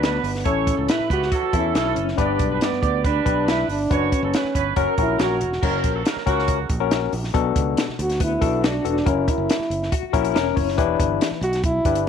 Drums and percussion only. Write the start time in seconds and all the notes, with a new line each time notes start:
0.03 snare, closed hi-hat
0.24 open hi-hat
0.35 snare
0.45 kick, closed hi-hat
0.67 kick, closed hi-hat
0.89 snare, closed hi-hat
1.10 kick, closed hi-hat
1.22 snare
1.32 kick, closed hi-hat
1.53 kick, closed hi-hat
1.75 snare, closed hi-hat
1.96 closed hi-hat
2.08 snare
2.18 kick, closed hi-hat
2.39 kick, closed hi-hat
2.61 snare, closed hi-hat
2.73 snare
2.83 kick, closed hi-hat
3.05 kick, closed hi-hat
3.26 kick, closed hi-hat
3.48 snare, closed hi-hat
3.69 open hi-hat
3.91 kick, closed hi-hat
4.12 kick, closed hi-hat
4.34 snare, closed hi-hat
4.45 snare
4.55 kick, closed hi-hat
4.76 kick, closed hi-hat
4.98 kick, closed hi-hat
5.19 snare, closed hi-hat
5.41 closed hi-hat
5.52 snare
5.63 kick, crash
5.84 kick, closed hi-hat
6.05 snare, closed hi-hat
6.17 snare
6.27 kick, closed hi-hat
6.39 snare
6.48 kick, closed hi-hat
6.69 kick, closed hi-hat
6.91 snare, closed hi-hat
7.13 open hi-hat
7.24 snare
7.34 kick, closed hi-hat
7.56 kick, closed hi-hat
7.77 snare, closed hi-hat
7.89 snare
7.99 closed hi-hat
8.10 snare, closed hi-hat
8.20 kick, closed hi-hat
8.42 kick, closed hi-hat
8.64 snare, closed hi-hat
8.85 closed hi-hat
8.97 snare
9.06 kick, closed hi-hat
9.28 kick, closed hi-hat
9.50 snare, closed hi-hat
9.61 snare
9.71 closed hi-hat
9.83 snare
9.92 kick, closed hi-hat
10.14 kick, closed hi-hat
10.25 closed hi-hat
10.36 snare, closed hi-hat
10.57 kick, open hi-hat
10.68 snare
10.78 kick, closed hi-hat
11.00 kick, closed hi-hat
11.21 snare, closed hi-hat
11.32 snare
11.43 closed hi-hat
11.53 snare, closed hi-hat
11.64 kick, closed hi-hat
11.85 kick, closed hi-hat
11.95 closed hi-hat